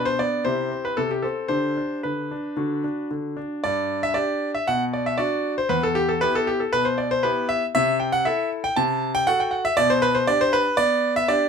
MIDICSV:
0, 0, Header, 1, 2, 480
1, 0, Start_track
1, 0, Key_signature, 1, "major"
1, 0, Tempo, 527241
1, 1371, Time_signature, 4, 2, 24, 8
1, 3780, Tempo, 510204
1, 10681, End_track
2, 0, Start_track
2, 0, Title_t, "Grand piano"
2, 0, Program_c, 0, 0
2, 0, Note_on_c, 0, 47, 54
2, 0, Note_on_c, 0, 62, 50
2, 0, Note_on_c, 0, 67, 47
2, 49, Note_on_c, 0, 72, 91
2, 168, Note_off_c, 0, 47, 0
2, 172, Note_off_c, 0, 72, 0
2, 175, Note_on_c, 0, 74, 90
2, 178, Note_on_c, 0, 59, 46
2, 368, Note_off_c, 0, 67, 0
2, 370, Note_off_c, 0, 62, 0
2, 388, Note_off_c, 0, 74, 0
2, 406, Note_off_c, 0, 59, 0
2, 406, Note_on_c, 0, 72, 90
2, 409, Note_on_c, 0, 64, 39
2, 414, Note_on_c, 0, 48, 58
2, 415, Note_on_c, 0, 67, 44
2, 643, Note_off_c, 0, 48, 0
2, 651, Note_on_c, 0, 60, 46
2, 765, Note_off_c, 0, 72, 0
2, 771, Note_on_c, 0, 71, 73
2, 881, Note_off_c, 0, 60, 0
2, 882, Note_on_c, 0, 69, 81
2, 889, Note_off_c, 0, 71, 0
2, 889, Note_on_c, 0, 48, 52
2, 994, Note_off_c, 0, 67, 0
2, 1004, Note_off_c, 0, 69, 0
2, 1008, Note_on_c, 0, 67, 62
2, 1115, Note_on_c, 0, 69, 70
2, 1122, Note_off_c, 0, 48, 0
2, 1127, Note_on_c, 0, 60, 45
2, 1128, Note_off_c, 0, 67, 0
2, 1332, Note_off_c, 0, 64, 0
2, 1351, Note_on_c, 0, 72, 86
2, 1357, Note_on_c, 0, 62, 35
2, 1358, Note_on_c, 0, 67, 39
2, 1359, Note_on_c, 0, 50, 54
2, 1363, Note_off_c, 0, 60, 0
2, 1364, Note_off_c, 0, 69, 0
2, 1597, Note_off_c, 0, 62, 0
2, 1602, Note_off_c, 0, 50, 0
2, 1611, Note_on_c, 0, 62, 47
2, 1814, Note_off_c, 0, 72, 0
2, 1851, Note_off_c, 0, 62, 0
2, 1851, Note_on_c, 0, 71, 58
2, 1861, Note_on_c, 0, 50, 43
2, 2097, Note_off_c, 0, 50, 0
2, 2106, Note_on_c, 0, 62, 43
2, 2303, Note_off_c, 0, 67, 0
2, 2325, Note_off_c, 0, 62, 0
2, 2337, Note_on_c, 0, 50, 55
2, 2338, Note_on_c, 0, 62, 37
2, 2342, Note_on_c, 0, 66, 35
2, 2572, Note_off_c, 0, 62, 0
2, 2575, Note_off_c, 0, 50, 0
2, 2586, Note_on_c, 0, 62, 44
2, 2788, Note_off_c, 0, 71, 0
2, 2821, Note_off_c, 0, 62, 0
2, 2829, Note_on_c, 0, 50, 46
2, 3064, Note_off_c, 0, 50, 0
2, 3064, Note_on_c, 0, 62, 48
2, 3272, Note_off_c, 0, 66, 0
2, 3300, Note_off_c, 0, 62, 0
2, 3310, Note_on_c, 0, 74, 98
2, 3313, Note_on_c, 0, 43, 60
2, 3663, Note_off_c, 0, 74, 0
2, 3670, Note_on_c, 0, 76, 96
2, 3768, Note_off_c, 0, 43, 0
2, 3771, Note_on_c, 0, 74, 95
2, 3782, Note_on_c, 0, 62, 47
2, 3784, Note_off_c, 0, 76, 0
2, 3785, Note_on_c, 0, 67, 55
2, 4103, Note_off_c, 0, 74, 0
2, 4132, Note_off_c, 0, 62, 0
2, 4134, Note_off_c, 0, 67, 0
2, 4150, Note_on_c, 0, 76, 83
2, 4269, Note_off_c, 0, 76, 0
2, 4272, Note_on_c, 0, 78, 102
2, 4275, Note_on_c, 0, 47, 67
2, 4415, Note_off_c, 0, 78, 0
2, 4516, Note_on_c, 0, 74, 67
2, 4632, Note_off_c, 0, 74, 0
2, 4637, Note_on_c, 0, 76, 82
2, 4738, Note_off_c, 0, 47, 0
2, 4743, Note_on_c, 0, 74, 92
2, 4750, Note_on_c, 0, 62, 46
2, 4752, Note_off_c, 0, 76, 0
2, 4755, Note_on_c, 0, 66, 54
2, 5073, Note_off_c, 0, 74, 0
2, 5099, Note_off_c, 0, 62, 0
2, 5103, Note_off_c, 0, 66, 0
2, 5122, Note_on_c, 0, 72, 89
2, 5229, Note_on_c, 0, 71, 97
2, 5230, Note_on_c, 0, 40, 60
2, 5239, Note_off_c, 0, 72, 0
2, 5353, Note_off_c, 0, 71, 0
2, 5361, Note_on_c, 0, 69, 91
2, 5473, Note_on_c, 0, 67, 91
2, 5480, Note_off_c, 0, 69, 0
2, 5595, Note_off_c, 0, 67, 0
2, 5599, Note_on_c, 0, 69, 79
2, 5702, Note_off_c, 0, 40, 0
2, 5716, Note_on_c, 0, 71, 102
2, 5719, Note_off_c, 0, 69, 0
2, 5724, Note_on_c, 0, 59, 47
2, 5732, Note_on_c, 0, 64, 44
2, 5734, Note_on_c, 0, 67, 57
2, 5838, Note_off_c, 0, 71, 0
2, 5851, Note_on_c, 0, 69, 91
2, 5949, Note_off_c, 0, 67, 0
2, 5963, Note_on_c, 0, 67, 87
2, 5965, Note_off_c, 0, 69, 0
2, 6068, Note_off_c, 0, 59, 0
2, 6073, Note_off_c, 0, 64, 0
2, 6081, Note_off_c, 0, 67, 0
2, 6083, Note_on_c, 0, 69, 64
2, 6201, Note_off_c, 0, 69, 0
2, 6201, Note_on_c, 0, 71, 102
2, 6211, Note_on_c, 0, 47, 52
2, 6318, Note_on_c, 0, 72, 88
2, 6320, Note_off_c, 0, 71, 0
2, 6438, Note_off_c, 0, 72, 0
2, 6439, Note_on_c, 0, 74, 74
2, 6559, Note_off_c, 0, 74, 0
2, 6563, Note_on_c, 0, 72, 92
2, 6676, Note_on_c, 0, 71, 89
2, 6681, Note_off_c, 0, 72, 0
2, 6684, Note_on_c, 0, 59, 49
2, 6684, Note_on_c, 0, 64, 49
2, 6686, Note_on_c, 0, 67, 50
2, 6709, Note_off_c, 0, 47, 0
2, 6894, Note_off_c, 0, 71, 0
2, 6918, Note_on_c, 0, 76, 93
2, 7029, Note_off_c, 0, 59, 0
2, 7029, Note_off_c, 0, 64, 0
2, 7030, Note_off_c, 0, 67, 0
2, 7063, Note_off_c, 0, 76, 0
2, 7162, Note_on_c, 0, 76, 111
2, 7169, Note_on_c, 0, 48, 78
2, 7378, Note_off_c, 0, 76, 0
2, 7397, Note_on_c, 0, 79, 77
2, 7517, Note_on_c, 0, 78, 108
2, 7519, Note_off_c, 0, 79, 0
2, 7632, Note_off_c, 0, 48, 0
2, 7638, Note_on_c, 0, 76, 88
2, 7639, Note_off_c, 0, 78, 0
2, 7645, Note_on_c, 0, 64, 52
2, 7651, Note_on_c, 0, 69, 57
2, 7854, Note_off_c, 0, 76, 0
2, 7988, Note_off_c, 0, 64, 0
2, 7992, Note_off_c, 0, 69, 0
2, 8002, Note_on_c, 0, 79, 97
2, 8119, Note_on_c, 0, 81, 99
2, 8120, Note_off_c, 0, 79, 0
2, 8125, Note_on_c, 0, 48, 74
2, 8442, Note_off_c, 0, 81, 0
2, 8479, Note_on_c, 0, 79, 113
2, 8587, Note_off_c, 0, 48, 0
2, 8594, Note_on_c, 0, 78, 117
2, 8598, Note_off_c, 0, 79, 0
2, 8602, Note_on_c, 0, 66, 50
2, 8605, Note_on_c, 0, 69, 57
2, 8716, Note_off_c, 0, 78, 0
2, 8718, Note_on_c, 0, 79, 81
2, 8821, Note_on_c, 0, 78, 78
2, 8838, Note_off_c, 0, 79, 0
2, 8945, Note_off_c, 0, 66, 0
2, 8947, Note_off_c, 0, 69, 0
2, 8948, Note_off_c, 0, 78, 0
2, 8950, Note_on_c, 0, 76, 106
2, 9063, Note_on_c, 0, 74, 122
2, 9073, Note_off_c, 0, 76, 0
2, 9074, Note_on_c, 0, 47, 77
2, 9188, Note_off_c, 0, 74, 0
2, 9188, Note_on_c, 0, 72, 101
2, 9301, Note_on_c, 0, 71, 109
2, 9310, Note_off_c, 0, 72, 0
2, 9420, Note_on_c, 0, 72, 94
2, 9426, Note_off_c, 0, 71, 0
2, 9535, Note_off_c, 0, 47, 0
2, 9540, Note_on_c, 0, 74, 106
2, 9545, Note_off_c, 0, 72, 0
2, 9546, Note_on_c, 0, 62, 61
2, 9547, Note_on_c, 0, 67, 55
2, 9664, Note_off_c, 0, 74, 0
2, 9667, Note_on_c, 0, 72, 105
2, 9779, Note_on_c, 0, 71, 105
2, 9788, Note_off_c, 0, 72, 0
2, 9891, Note_off_c, 0, 62, 0
2, 9892, Note_off_c, 0, 67, 0
2, 9998, Note_off_c, 0, 71, 0
2, 10007, Note_on_c, 0, 74, 119
2, 10010, Note_on_c, 0, 59, 65
2, 10338, Note_off_c, 0, 74, 0
2, 10375, Note_on_c, 0, 76, 105
2, 10490, Note_on_c, 0, 74, 102
2, 10491, Note_on_c, 0, 62, 58
2, 10497, Note_on_c, 0, 67, 59
2, 10500, Note_off_c, 0, 76, 0
2, 10520, Note_off_c, 0, 59, 0
2, 10681, Note_off_c, 0, 62, 0
2, 10681, Note_off_c, 0, 67, 0
2, 10681, Note_off_c, 0, 74, 0
2, 10681, End_track
0, 0, End_of_file